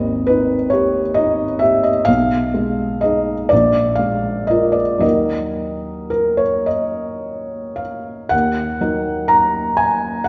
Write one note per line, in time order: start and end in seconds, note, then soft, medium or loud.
0.00 2.00 G#1 soft
0.00 0.55 D#2 soft
0.00 0.26 D#5 medium
0.27 0.99 D#4 soft
0.27 0.71 B4 medium
0.70 1.44 G4 soft
0.70 1.16 C#5 medium
1.14 1.90 D#4 soft
1.14 1.61 D#5 medium
1.59 2.08 G4 soft
1.59 1.83 E5 medium
1.83 2.07 D#5 medium
2.05 3.47 B1 soft
2.05 3.01 F5 medium
2.54 3.32 G#3 soft
3.01 3.48 D#4 soft
3.01 3.48 G#4 soft
3.01 3.50 D#5 medium
3.49 4.99 A#1 soft
3.49 3.99 D5 medium
3.95 4.81 G#3 soft
3.95 4.48 F5 medium
4.47 4.99 F4 soft
4.47 4.99 A#4 soft
4.47 4.74 D#5 medium
4.72 5.01 D5 medium
4.99 8.26 D#2 soft
4.99 8.27 F#3 soft
4.99 8.28 D#4 soft
4.99 6.09 A#4 soft
4.99 6.65 D#5 medium
6.10 6.40 A#4 medium
6.37 6.67 C#5 medium
6.66 7.79 D#5 medium
7.76 8.30 F5 medium
8.29 8.80 D#2 soft
8.29 9.29 F#5 medium
8.81 10.22 F#3 soft
8.81 10.22 D#4 soft
8.81 10.22 A#4 soft
9.28 9.78 A#5 medium
9.77 10.25 G#5 medium
10.24 10.28 F#5 medium